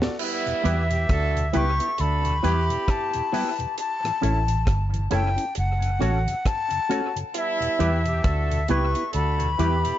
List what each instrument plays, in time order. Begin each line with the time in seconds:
0.01 tonewheel organ D2 A2, upright piano F#4 A4 D5, muted clean electric guitar stroke, snare
0.19 horn section G3 B3 E4, flute E5, crash
0.46 tonewheel organ E2 B2, closed hi-hat
0.64 fingered electric bass E2, tonewheel organ G3 B3 E4, clean electric guitar B3 E4 G4, upright piano E4 G4 B4, closed hi-hat
0.90 tonewheel organ E2 B2, horn section B3 E4 G4, closed hi-hat
1.09 fingered electric bass D2, horn section D4 F#4 A4, kick, cross-stick, closed hi-hat
1.35 tonewheel organ E2 B2, closed hi-hat
1.53 fingered electric bass C#2, tonewheel organ G3 B3 E4, clean electric guitar B3 E4 G4, horn section B3 E4 G4, upright piano E4 G4 B4, flute C#6, closed hi-hat
1.80 tonewheel organ B3 E4, upright piano G4 B4, closed hi-hat
1.98 fingered electric bass D2, horn section D4 F#4 A4, flute B5, closed hi-hat
2.25 tonewheel organ E2 B2, closed hi-hat
2.43 fingered electric bass E2, tonewheel organ G3 B3 E4, clean electric guitar B3 E4 G4, horn section B3 E4 G4, upright piano E4 G4 B4, closed hi-hat
2.70 tonewheel organ E2 B2, closed hi-hat
2.88 flute A5, kick, cross-stick, closed hi-hat
3.13 tonewheel organ E2 B2, closed hi-hat
3.32 tonewheel organ G3 B3 E4, clean electric guitar B3 E4 G4, upright piano E4 G4 B4, open hi-hat
3.59 tonewheel organ E2 B2, upright piano G4 B4, closed hi-hat
3.78 flute A5, closed hi-hat
4.04 tonewheel organ A2 E3, cross-stick, closed hi-hat
4.21 fingered electric bass A1, tonewheel organ A3 C#4 E4, clean electric guitar C#4 E4 A4, upright piano E4 A4 C#5, closed hi-hat
4.48 tonewheel organ A2 E3, closed hi-hat
4.67 fingered electric bass G1, kick, cross-stick, closed hi-hat
4.92 tonewheel organ A2 E3, closed hi-hat
5.11 fingered electric bass F#1, tonewheel organ A3 C#4 E4, clean electric guitar C#4 E4 A4, upright piano E4 A4 C#5, flute G5, cross-stick, closed hi-hat
5.36 tonewheel organ C#4 E4, upright piano A4 C#5, closed hi-hat
5.55 fingered electric bass F#1, flute F#5, closed hi-hat
5.81 tonewheel organ F#2 C#3, closed hi-hat
5.99 fingered electric bass A1, tonewheel organ A3 C#4 F#4, clean electric guitar C#4 F#4 A4, upright piano F#4 A4 C#5, closed hi-hat
6.26 tonewheel organ F#2 C#3, closed hi-hat
6.46 flute A5, kick, cross-stick, closed hi-hat
6.71 tonewheel organ F#2 C#3, closed hi-hat
6.89 tonewheel organ A3 C#4 F#4, clean electric guitar C#4 F#4 A4, upright piano F#4 A4 C#5, closed hi-hat
7.16 tonewheel organ F#2 C#3, upright piano A4 C#5, muted clean electric guitar stroke, closed hi-hat
7.34 horn section G3 B3 E4, flute E5, closed hi-hat
7.60 tonewheel organ E2 B2, closed hi-hat
7.79 fingered electric bass E2, tonewheel organ G3 B3 E4, clean electric guitar B3 E4 G4, upright piano E4 G4 B4, closed hi-hat
8.06 tonewheel organ E2 B2, horn section B3 E4 G4, closed hi-hat
8.24 fingered electric bass D2, horn section D4 F#4 A4, kick, cross-stick, closed hi-hat
8.50 tonewheel organ E2 B2, closed hi-hat
8.68 fingered electric bass C#2, tonewheel organ G3 B3 E4, clean electric guitar B3 E4 G4, horn section E4 G4 B4, upright piano E4 G4 B4, flute C#6, closed hi-hat
8.95 tonewheel organ B3 E4, closed hi-hat
9.13 fingered electric bass D2, horn section D4 F#4 A4, flute B5, closed hi-hat
9.40 tonewheel organ E2 B2, closed hi-hat
9.58 fingered electric bass E2, tonewheel organ G3 B3 E4, horn section B3 E4 G4, clean electric guitar B3 E4 G4, upright piano E4 G4 B4, closed hi-hat
9.85 tonewheel organ E2 B2, closed hi-hat